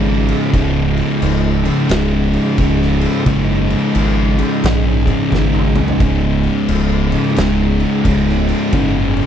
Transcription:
Already playing: G#1 C#2 G#2 C#3 G#3 D#4
0.28 crash
0.52 C#1 C#2 G#2 C#3, kick, crash
0.97 crash
1.22 C#1, crash
1.64 C#2 G#2 C#3, crash
1.89 C#1 C#2 G#2 C#3, snare, crash
2.33 crash
2.57 C#1 C#2 G#2 C#3, kick, crash
2.82 snare
3.01 crash
3.25 F#1 C#2 G#2 C#3, kick, crash
3.70 crash
3.95 G#1, crash
4.38 C#2 G#2 C#3, crash
4.63 A#1 C#2 G#2 C#3, snare, crash
5.07 kick, crash
5.31 G#1 C#2 G#2 C#3, kick, snare
5.54 high tom
5.76 mid tom
5.88 floor tom
5.99 C#1 C#2 G#2 C#3, kick, crash
6.43 crash
6.68 C#1, crash
7.11 C#2 G#2 C#3, crash
7.36 C#1 C#2 G#2 C#3, snare, crash
7.80 crash
8.04 C#1 C#2 G#2 C#3, kick, crash
8.29 snare
8.49 crash
8.72 F#1 C#2 G#2 C#3, kick, crash
9.17 crash

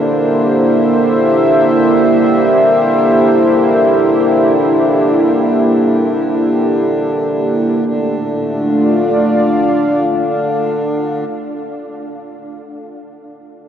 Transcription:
Already playing: D3 A#3 D4 E4 G4 C5 D5 E5
7.85 D3 A3 D4
8.03 D4
8.19 F4
8.40 D5
8.58 F5

